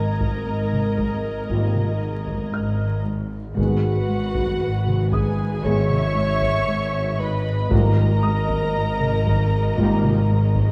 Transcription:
Already playing: double bass section G#1, synth drone G#1, cello section G#2 G#3, clarinet A#4, viola section A#4, violin section D#5 A#5 D#6 G#6, felt piano G#5 G#6
0.20 taiko
0.47 double bass section G#1, cello section G#2
0.73 taiko mid
0.97 cello section G#3, taiko
1.49 double bass section G#1, cello section G#2, trombone section D#3 G3, french horn section A#3 F4, taiko
1.75 taiko mid
2.01 cello section G#2
2.27 taiko
2.52 double bass section G#1, cello section G#2, felt piano F6
3.05 cello section G#2
3.57 double bass section G#1, synth drone G#1, cello section G#2, trombone section D#3 G#3, french horn section B3 G#4, viola section F#4, clarinet F#4, violin section B4 F#5, taiko
4.08 cello section G#3
4.35 taiko
4.60 double bass section G#1, cello section G#2
4.87 taiko mid
5.11 cello section G#3, viola section G#4, clarinet G#4, violin section B4 G#5, felt piano D#6, taiko
5.63 double bass section G#1, cello section G#2, trombone section D#3 G#3, french horn section B3 G#4, viola section C#5, clarinet C#5, violin section E5 C#6, taiko
5.90 taiko mid
6.15 cello section G#2
6.42 taiko
6.67 double bass section G#1, cello section G#2
7.19 cello section G#2, clarinet B4, viola section B4, violin section D#5 B5
7.70 double bass section G#1, synth drone G#1, cello section G#2, trombone section D#3 G3, french horn section A#3 F4, viola section A#4, clarinet A#4, violin section D#5 A#5, taiko
8.23 cello section G#3, felt piano D#6
8.48 taiko
8.75 double bass section G#1, cello section G#2
9.01 taiko mid
9.26 cello section G#3, taiko
9.78 double bass section G#1, cello section G#2, trombone section D#3 G3, french horn section A#3 F4, taiko
10.04 taiko mid
10.30 cello section G#2
10.55 taiko

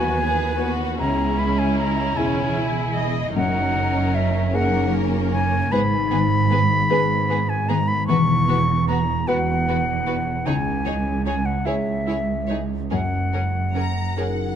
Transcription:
Already playing: cello section D#2, double bass section D#2, grand piano E2 E4 F#4, harp F#3 B3 E4 F#4, viola section B3, violin section F#4 B4, flute G#5
0.21 harp E4, violin section G#4
0.61 harp B3, violin section F#4
0.99 cello section C#2, double bass section C#2, grand piano C#2, harp C#3, viola section C#4, violin section E4 G#4, flute A#5
1.39 harp G#3, flute B5
1.59 flute G#5
1.78 harp D#5, flute A#5
2.17 double bass section E1, cello section E2, viola section C#4, harp E4, grand piano E4 G#4, violin section G#4, flute G#5
2.56 harp C#4, viola section E4
2.96 harp G#3, viola section D#5
3.35 double bass section F#1, harp F#2, cello section F#2, grand piano F#2, viola section C#4, violin section D#4 A#4, flute F#5
3.75 harp C#3
4.15 harp C#4, flute E5
4.53 viola section A#3, violin section C#4 A#4, harp D#4, grand piano G#4 A#4, flute F#5
4.93 harp C#4
5.32 harp C#3, flute G#5
5.72 double bass section G#1, harp G#2, cello section G#2, grand piano G#2, viola section B3, violin section G#4 B4, flute B5
6.11 harp D#3, viola section B3, violin section G#4 B4
6.50 viola section B3, harp B3, violin section G#4 B4
6.90 double bass section G#1, cello section G#2, viola section B3, harp C#4, grand piano G#4 B4, violin section G#4 B4
7.29 viola section B3, harp B3, violin section G#4 B4
7.49 flute G#5
7.69 harp D#3, viola section B3, violin section G#4 B4, flute A#5
7.88 flute B5
8.07 double bass section E1, cello section E2, grand piano E2, harp E3, viola section B3, violin section F#4 B4, flute C#6
8.48 viola section B3, harp E4, violin section F#4 B4
8.88 harp B3, viola section B3, violin section F#4 B4, flute A#5
9.28 double bass section E1, cello section E2, viola section B3, harp C#4, grand piano F#4 B4, violin section F#4 B4, flute F#5
9.67 viola section B3, harp B3, violin section F#4 B4
10.06 viola section B3, harp E4, violin section F#4 B4
10.46 grand piano C#2, double bass section C#2, cello section C#2, harp C#3, viola section D#4, violin section G#4 C#5, flute G#5
10.86 harp G#3, viola section D#4, violin section G#4 C#5
11.25 harp C#4, viola section D#4, violin section G#4 C#5, flute G#5
11.46 flute F#5
11.66 double bass section C#2, cello section C#2, viola section E4, harp E4, grand piano G#4 C#5, violin section G#4 C#5, flute E5
12.07 viola section E4, violin section G#4 C#5
12.48 harp G#3, viola section D#4, violin section G#4 C#5
12.91 double bass section F#1, harp F#2, cello section F#2, grand piano F#2, viola section C#4, violin section G#4 A#4, flute F#5
13.33 harp C#3, viola section C#4, violin section G#4 A#4
13.74 harp C#4, viola section C#4, violin section G#4 A#4 A#5
14.16 double bass section F#1, cello section F#2, viola section C#4, harp D#4, grand piano G#4 A#4, violin section G#4 A#4 F#5

